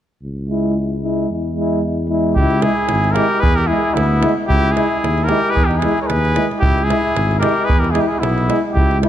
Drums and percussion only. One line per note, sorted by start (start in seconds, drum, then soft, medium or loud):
2.36 davul low medium
2.50 davul high soft
2.62 davul high medium
2.89 davul high medium
3.04 davul high soft
3.16 davul high medium
3.43 davul low medium
3.58 davul high soft
3.97 davul high medium
4.23 davul high medium
4.50 davul low medium
4.65 davul high soft
4.77 davul high soft
5.04 davul high medium
5.18 davul high soft
5.29 davul high soft
5.56 davul low medium
5.71 davul high soft
5.82 davul high medium
5.98 davul high soft
6.10 davul high medium
6.25 davul high soft
6.36 davul high medium
6.51 davul high soft
6.62 davul low medium
6.78 davul high soft
6.90 davul high medium
7.17 davul high medium
7.31 davul high soft
7.43 davul high medium
7.69 davul low medium
7.84 davul high soft
7.95 davul high medium
8.23 davul high medium
8.38 davul high soft
8.50 davul high medium
8.77 davul low medium
8.91 davul high soft
9.03 davul high medium